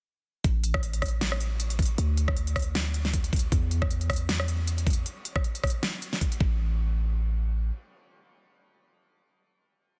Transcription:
0.44 808-style bass A1, kick, closed hi-hat
0.64 closed hi-hat
0.74 kick, cross-stick
0.83 closed hi-hat
0.93 closed hi-hat
1.02 kick, cross-stick, closed hi-hat
1.06 closed hi-hat
1.08 closed hi-hat
1.21 snare, closed hi-hat
1.32 cross-stick
1.40 closed hi-hat
1.60 closed hi-hat
1.70 closed hi-hat
1.79 kick, closed hi-hat
1.82 closed hi-hat
1.85 closed hi-hat
1.98 808-style bass D2, closed hi-hat
2.17 closed hi-hat
2.28 kick, cross-stick
2.37 closed hi-hat
2.47 closed hi-hat
2.56 kick, cross-stick, closed hi-hat
2.59 closed hi-hat
2.62 closed hi-hat
2.75 snare, closed hi-hat
2.94 closed hi-hat
3.05 snare
3.14 kick, closed hi-hat
3.24 closed hi-hat
3.33 kick, closed hi-hat
3.36 closed hi-hat
3.39 closed hi-hat
3.52 808-style bass E2, kick, closed hi-hat
3.71 closed hi-hat
3.82 kick, cross-stick
3.91 closed hi-hat
4.01 closed hi-hat
4.10 kick, cross-stick, closed hi-hat
4.13 closed hi-hat
4.16 closed hi-hat
4.29 snare, closed hi-hat
4.40 cross-stick
4.48 closed hi-hat
4.67 closed hi-hat
4.78 closed hi-hat
4.87 kick, closed hi-hat
4.90 closed hi-hat
4.93 closed hi-hat
5.06 closed hi-hat
5.25 closed hi-hat
5.36 kick, cross-stick
5.44 closed hi-hat
5.55 closed hi-hat
5.64 kick, cross-stick, closed hi-hat
5.67 closed hi-hat
5.70 closed hi-hat
5.83 snare, closed hi-hat
6.02 closed hi-hat
6.13 snare
6.21 kick, closed hi-hat
6.32 closed hi-hat
6.40 808-style bass A1, kick

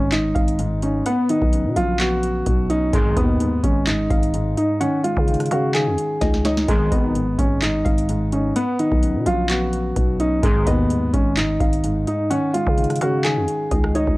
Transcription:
Already playing: 808-style bass G#1, grand piano G#2 D#3 G#3
0.12 grand piano G#2 D#4, clap, closed hi-hat
0.35 808-style bass G#1, synth pluck F5, kick, closed hi-hat
0.48 closed hi-hat
0.59 grand piano G#2, closed hi-hat
0.82 grand piano C#4 D#4, closed hi-hat
1.06 grand piano B3, synth pluck F#5, closed hi-hat
1.29 grand piano D#3 D#4, closed hi-hat
1.42 808-style bass B1, kick
1.53 grand piano C#3, closed hi-hat
1.65 808-style bass B2
1.76 808-style bass A#1, grand piano F#3 F4, synth pluck F5, closed hi-hat
1.99 grand piano B3 F#4, clap, closed hi-hat
2.23 closed hi-hat
2.46 808-style bass B1, grand piano B2, kick, closed hi-hat
2.70 grand piano C#4 D#4, closed hi-hat
2.93 808-style bass G#1, analog polysynth B1 G#2 D#3, grand piano G#2 G#3, kick, closed hi-hat
3.16 808-style bass D#2, grand piano D#3 B3, synth pluck D#5, kick, closed hi-hat
3.40 grand piano G#2, closed hi-hat
3.63 808-style bass G#1, grand piano G#3 C#4, kick, closed hi-hat
3.87 grand piano G#2 D#4, clap, closed hi-hat
4.10 808-style bass G#1, synth pluck F5, kick, closed hi-hat
4.23 closed hi-hat
4.34 grand piano G#2, closed hi-hat
4.57 grand piano D#4, closed hi-hat
4.80 grand piano D#3 C#4, synth pluck F#5, closed hi-hat
5.04 grand piano G#3 F4, closed hi-hat
5.17 808-style bass C#3, kick
5.28 grand piano D#3, closed hi-hat
5.34 closed hi-hat
5.40 cross-stick, closed hi-hat
5.46 closed hi-hat
5.51 808-style bass C#3, grand piano C#4 F#4, synth pluck F5, closed hi-hat
5.74 grand piano D#3 G#4, clap, closed hi-hat
5.87 808-style bass F2
5.98 closed hi-hat
6.21 808-style bass C#2, grand piano D#3, synth pluck D#5, kick, snare, closed hi-hat
6.34 snare
6.45 grand piano D#4 D#5, synth pluck C#5, snare, closed hi-hat
6.57 snare
6.68 808-style bass G#1, analog polysynth B1 G#2 D#3, grand piano G#2 G#3, kick, closed hi-hat
6.92 808-style bass G#1, grand piano D#3 B3, synth pluck D#5, kick, closed hi-hat
7.15 grand piano G#2, closed hi-hat
7.39 808-style bass G#1, grand piano G#3 C#4, kick, closed hi-hat
7.62 grand piano G#2 D#4, clap, closed hi-hat
7.85 808-style bass G#1, synth pluck F5, kick, closed hi-hat
7.98 closed hi-hat
8.09 grand piano G#2, closed hi-hat
8.32 grand piano C#4 D#4, closed hi-hat
8.56 grand piano B3, synth pluck F#5, closed hi-hat
8.79 grand piano D#3 D#4, closed hi-hat
8.92 808-style bass B1, kick
9.03 grand piano C#3, closed hi-hat
9.15 808-style bass B2
9.26 808-style bass A#1, grand piano F#3 F4, synth pluck F5, closed hi-hat
9.49 grand piano B3 F#4, clap, closed hi-hat
9.73 closed hi-hat
9.96 808-style bass B1, grand piano B2, kick, closed hi-hat
10.19 grand piano C#4 D#4, closed hi-hat
10.42 808-style bass G#1, analog polysynth B1 G#2 D#3, grand piano G#2 G#3, kick, closed hi-hat
10.66 808-style bass D#2, grand piano D#3 B3, synth pluck D#5, kick, closed hi-hat
10.90 grand piano G#2, closed hi-hat
11.13 808-style bass G#1, grand piano G#3 C#4, kick, closed hi-hat
11.37 grand piano G#2 D#4, clap, closed hi-hat
11.60 808-style bass G#1, synth pluck F5, kick, closed hi-hat
11.73 closed hi-hat
11.84 grand piano G#2, closed hi-hat
12.07 grand piano D#4, closed hi-hat
12.30 grand piano D#3 C#4, synth pluck F#5, closed hi-hat
12.53 grand piano G#3 F4, closed hi-hat
12.67 808-style bass C#3, kick
12.78 grand piano D#3, closed hi-hat
12.84 closed hi-hat
12.90 cross-stick, closed hi-hat
12.96 closed hi-hat
13.01 808-style bass C#3, grand piano C#4 F#4, synth pluck F5, closed hi-hat
13.24 grand piano D#3 G#4, clap, closed hi-hat
13.37 808-style bass F2
13.48 closed hi-hat
13.71 808-style bass C#2, grand piano D#3, synth pluck D#5, kick, closed hi-hat
13.84 cross-stick
13.95 grand piano D#4 D#5, synth pluck C#5, closed hi-hat
14.07 808-style bass C#2, kick

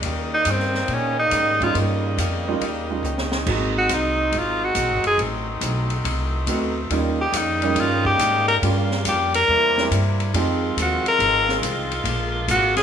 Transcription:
Already playing: saxophone section D#4
0.01 upright bass D#2, saxophone section C#3 G3 A#3, hollow-body jazz guitar D#3 A#3 C#4, kick, ride
0.06 hollow-body jazz guitar G4
0.34 tenor saxophone D#4
0.45 upright bass G2, hollow-body jazz guitar D#3 A#3 C#4 G4, kick, hi-hat pedal, ride
0.51 tenor saxophone C4
0.60 snare
0.74 snare
0.88 upright bass A#2, hollow-body jazz guitar D#3 A#3 C#4, kick, ride
0.93 tenor saxophone C#4, hollow-body jazz guitar G4
1.19 tenor saxophone D#4
1.31 upright bass G#2, hollow-body jazz guitar D#3 A#3 C#4 G4, kick, hi-hat pedal, ride
1.61 grand piano G3 A#3 C#4 D#4 F4, tenor saxophone F4, kick, ride
1.74 upright bass G2, hollow-body jazz guitar D#3 A#3 C#4 G4, kick, ride
2.17 upright bass F2, hollow-body jazz guitar D#3 A#3 C#4 G4, kick, hi-hat pedal, ride
2.48 grand piano G3 A#3 C#4 D#4 F4
2.61 upright bass D#2, hollow-body jazz guitar D#3 A#3 C#4 G4, kick, ride
2.90 grand piano G3 A#3 C#4 D#4 F4
3.03 upright bass C#2, hollow-body jazz guitar D#3 A#3 C#4 G4, hi-hat pedal
3.18 snare
3.32 snare
3.46 upright bass G#1, hollow-body jazz guitar G#2 F#3 C4 D#4, saxophone section F#3 G#3 C4, grand piano G#3 A#3 C4 D#4 F#4, kick, crash
3.78 tenor saxophone F#4
3.89 upright bass C2, hollow-body jazz guitar G#2 F#3 C4 D#4, kick, hi-hat pedal, ride
3.94 tenor saxophone D#4
4.32 upright bass G#1, hollow-body jazz guitar G#2 F#3 C4 D#4, kick, ride
4.38 tenor saxophone F4
4.64 tenor saxophone F#4
4.75 upright bass A#1, hollow-body jazz guitar G#2 F#3 C4 D#4, kick, hi-hat pedal, ride
4.90 upright bass G#1
5.03 upright bass F#1, tenor saxophone G#4, ride
5.18 upright bass A1, hollow-body jazz guitar A2 F#3 C4 D#4, saxophone section A3, kick, ride
5.61 upright bass B1, hollow-body jazz guitar A2 F#3 C4 D#4, kick, hi-hat pedal, ride
5.90 ride
6.04 upright bass C2, hollow-body jazz guitar A2 F#3 C4 D#4, kick, ride
6.46 upright bass D2, hollow-body jazz guitar A2 F#3 C4 D#4, grand piano A3 B3 C4 D#4 F#4, kick, hi-hat pedal, ride
6.90 upright bass D#2, saxophone section C#3 G3 A#3 D#4, hollow-body jazz guitar D#3 A#3 C#4 G4, grand piano G3 A#3 C#4 D#4 F4, kick, ride
7.21 tenor saxophone G4
7.32 upright bass F2, hollow-body jazz guitar D#3 A#3 C#4 G4, kick, hi-hat pedal, ride
7.37 tenor saxophone D#4
7.62 grand piano G3 A#3 C#4 D#4 G4, ride
7.75 upright bass G2, hollow-body jazz guitar D#3 A#3 C#4 G4, kick, ride
7.80 tenor saxophone F4
8.05 tenor saxophone G4, kick
8.18 upright bass G#2, hollow-body jazz guitar D#3 A#3 C#4 G4, kick, hi-hat pedal, ride
8.48 tenor saxophone A#4, ride
8.61 upright bass G2, hollow-body jazz guitar G2 F3, grand piano G3 A#3 C#4 F4 G4, saxophone section F4, kick, ride
8.65 hollow-body jazz guitar A#3 C#4
8.91 snare
9.05 upright bass F2, hollow-body jazz guitar G2 F3 A#3, tenor saxophone G4, kick, hi-hat pedal, ride
9.09 hollow-body jazz guitar C#4
9.34 tenor saxophone A#4, ride
9.48 upright bass E2, saxophone section C3 E4, hollow-body jazz guitar C3 G3 A#3 E4, kick
9.78 grand piano G3 A#3 C4 E4 G4, snare
9.91 upright bass G2, hollow-body jazz guitar C3 G3 A#3 E4, kick, hi-hat pedal, ride
10.20 ride
10.33 upright bass F2, hollow-body jazz guitar F2 D#3, saxophone section D#3 G#3 C4 F4, grand piano F3 G#3 C4 D#4 G4, kick, ride
10.37 hollow-body jazz guitar G#3 C4
10.76 upright bass D#2, hollow-body jazz guitar F2 D#3 G#3, kick, hi-hat pedal, ride
10.80 hollow-body jazz guitar C4, tenor saxophone F#4
11.06 tenor saxophone A#4, ride
11.19 upright bass G#1, hollow-body jazz guitar F2 D#3 G#3 C4, kick, ride
11.49 snare
11.62 upright bass C2, hollow-body jazz guitar F2 D#3 G#3 C4, kick, hi-hat pedal, ride
11.91 ride
12.04 upright bass A#1, hollow-body jazz guitar A#2 F3 G#3, saxophone section D3 A#3, kick, ride
12.08 hollow-body jazz guitar D4
12.48 upright bass G#1, hollow-body jazz guitar A#2 F3 G#3 D4, tenor saxophone F#4, kick, hi-hat pedal, ride
12.76 tenor saxophone G#4, snare, ride

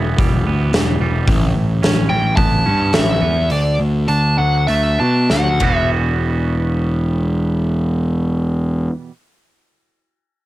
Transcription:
Already playing: picked electric bass E1, clean electric guitar E2 E3 G3 B3
0.18 picked electric bass E1, clean electric guitar G3, kick, open hi-hat
0.45 picked electric bass D2, clean electric guitar B3
0.73 picked electric bass E1, clean electric guitar E3, snare, open hi-hat
1.00 picked electric bass E1, clean electric guitar G3
1.27 picked electric bass A1, clean electric guitar A2, kick, open hi-hat
1.56 picked electric bass A1
1.83 picked electric bass A1, clean electric guitar C#4, snare, open hi-hat
2.09 picked electric bass A1, clean electric guitar E3, lead electric guitar G5
2.36 picked electric bass A1, clean electric guitar B3, lead electric guitar A5, kick, open hi-hat
2.66 picked electric bass G2, clean electric guitar C#4
2.93 picked electric bass A1, clean electric guitar E3, lead electric guitar E5, snare, open hi-hat
3.22 picked electric bass E2, clean electric guitar B3
3.50 picked electric bass D2, clean electric guitar D3, lead electric guitar D5, open hi-hat
3.80 picked electric bass D2
4.08 picked electric bass D2, clean electric guitar D4, lead electric guitar A5, open hi-hat
4.38 picked electric bass D2, clean electric guitar F#3, lead electric guitar F#5
4.67 picked electric bass D2, clean electric guitar A3, lead electric guitar E5, open hi-hat
4.98 picked electric bass B2, clean electric guitar D4, lead electric guitar A5
5.29 picked electric bass D2, clean electric guitar F#3, lead electric guitar F#5, snare
5.60 picked electric bass E1, clean electric guitar E2 B2 E3 G3 B3 F#4, kick, ride
5.77 lead electric guitar E5

